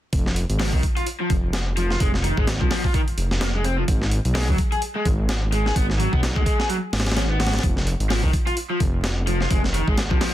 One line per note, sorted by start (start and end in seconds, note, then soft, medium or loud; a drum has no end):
0.13 0.45 F1 loud
0.13 kick loud
0.13 closed hi-hat medium
0.26 snare soft
0.36 closed hi-hat medium
0.49 0.74 G#1 medium
0.49 closed hi-hat soft
0.59 0.73 F3 medium
0.59 snare loud
0.59 open hi-hat medium
0.73 0.81 C2 medium
0.73 0.81 D#3 medium
0.73 kick medium
0.83 kick medium
0.83 closed hi-hat medium
0.97 1.04 F4 medium
0.97 closed hi-hat soft
1.07 closed hi-hat medium
1.20 1.30 F3 medium
1.30 1.97 F1 medium
1.30 kick medium
1.30 closed hi-hat medium
1.53 snare loud
1.53 closed hi-hat medium
1.77 1.90 F3 medium
1.77 closed hi-hat medium
1.90 1.98 F4 medium
1.90 snare soft
2.00 2.32 F1 loud
2.00 2.10 G#3 medium
2.00 kick loud
2.00 closed hi-hat medium
2.14 snare soft
2.24 2.36 D#3 medium
2.24 closed hi-hat medium
2.37 2.62 G#1 medium
2.37 2.45 G#3 medium
2.37 kick medium
2.47 snare loud
2.47 closed hi-hat medium
2.61 2.68 C2 medium
2.61 2.68 F3 medium
2.61 kick medium
2.71 2.83 F3 loud
2.71 snare loud
2.71 open hi-hat medium
2.84 2.92 F4 medium
2.84 kick medium
2.94 3.00 D#3 medium
2.94 kick medium
2.94 closed hi-hat medium
3.08 closed hi-hat soft
3.17 3.84 F1 medium
3.17 closed hi-hat medium
3.31 snare medium
3.41 3.47 A#3 medium
3.41 snare loud
3.41 closed hi-hat medium
3.55 3.64 G#3 medium
3.64 3.75 C4 medium
3.64 closed hi-hat medium
3.78 3.83 F3 medium
3.88 4.20 G#1 medium
3.88 kick loud
3.88 closed hi-hat medium
4.02 snare soft
4.11 closed hi-hat medium
4.25 4.50 B1 medium
4.25 closed hi-hat soft
4.35 4.48 G#3 medium
4.35 snare loud
4.35 open hi-hat medium
4.49 4.56 D#2 medium
4.49 4.56 F#3 medium
4.49 kick medium
4.58 kick medium
4.58 closed hi-hat medium
4.72 4.79 G#4 medium
4.72 closed hi-hat soft
4.82 closed hi-hat medium
4.96 5.05 G#3 medium
5.05 5.72 G#1 medium
5.05 kick medium
5.05 closed hi-hat medium
5.29 snare loud
5.29 closed hi-hat medium
5.52 5.65 G#3 medium
5.52 closed hi-hat medium
5.66 5.73 G#4 medium
5.66 snare soft
5.76 6.07 G#1 loud
5.76 5.86 B3 medium
5.76 kick loud
5.76 closed hi-hat medium
5.90 snare soft
5.99 6.11 F#3 medium
5.99 closed hi-hat medium
6.13 6.38 B1 medium
6.13 6.20 B3 medium
6.13 kick medium
6.23 snare loud
6.23 closed hi-hat medium
6.36 6.44 D#2 medium
6.36 6.43 G#3 medium
6.36 kick medium
6.46 6.58 G#3 loud
6.46 kick medium
6.46 closed hi-hat medium
6.59 6.67 G#4 medium
6.59 snare medium
6.69 6.75 F#3 loud
6.69 closed hi-hat medium
6.93 7.59 G#1 medium
6.93 snare medium
6.93 open hi-hat medium
7.00 snare medium
7.00 open hi-hat medium
7.07 snare medium
7.07 open hi-hat medium
7.12 snare medium
7.12 open hi-hat medium
7.16 7.22 C#4 loud
7.16 snare loud
7.16 closed hi-hat medium
7.30 7.37 B3 medium
7.40 7.52 F#4 medium
7.40 snare medium
7.40 open hi-hat medium
7.47 snare medium
7.47 open hi-hat medium
7.53 7.62 B3 loud
7.53 snare medium
7.53 open hi-hat medium
7.59 snare medium
7.59 open hi-hat medium
7.63 7.95 F1 loud
7.63 kick loud
7.63 closed hi-hat medium
7.77 snare soft
7.87 closed hi-hat medium
8.00 8.25 G#1 medium
8.00 closed hi-hat soft
8.10 8.23 F3 medium
8.10 snare loud
8.10 open hi-hat medium
8.24 8.31 C2 medium
8.24 8.31 D#3 medium
8.24 kick medium
8.33 kick medium
8.33 closed hi-hat medium
8.47 8.54 F4 medium
8.47 closed hi-hat soft
8.57 closed hi-hat medium
8.71 8.80 F3 medium
8.80 9.47 F1 medium
8.80 kick medium
8.80 closed hi-hat medium
9.04 snare loud
9.04 closed hi-hat medium
9.27 9.40 F3 medium
9.27 closed hi-hat medium
9.40 9.48 F4 medium
9.40 snare soft
9.50 9.82 F1 loud
9.50 9.60 G#3 medium
9.50 kick loud
9.50 closed hi-hat medium
9.64 snare soft
9.74 9.86 D#3 medium
9.74 closed hi-hat medium
9.87 10.12 G#1 loud
9.87 9.95 G#3 medium
9.87 kick medium
9.98 snare loud
9.98 closed hi-hat medium
10.11 10.19 C2 medium
10.11 10.18 F3 medium
10.11 kick medium
10.21 10.33 F3 loud
10.21 snare loud
10.21 open hi-hat medium